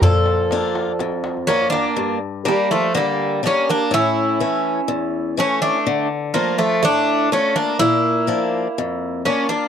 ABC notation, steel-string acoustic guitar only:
X:1
M:4/4
L:1/8
Q:1/4=124
K:none
V:1 name="Steel-string acoustic guitar"
_B,,2 [_B,DF]2 F,,2 [B,DF]2 | G,,2 [G,_B,D]2 D,2 [G,B,D]2 | A,,2 [E,A,^C]2 E,,2 [E,A,C]2 | D,2 [A,DF]2 A,,2 [A,DF]2 |
_B,,2 [F,_B,D]2 F,,2 [B,DF]2 |]